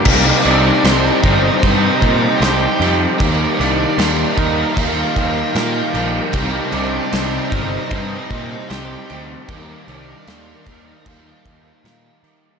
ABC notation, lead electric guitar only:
X:1
M:4/4
L:1/16
Q:1/4=76
K:Cm
V:1 name="Lead electric guitar"
B,2 D4 E2 E4 G3 z | B,2 D4 E2 F4 F3 z | B,2 D4 E2 E4 G3 z | B,2 D4- D E F6 z2 |]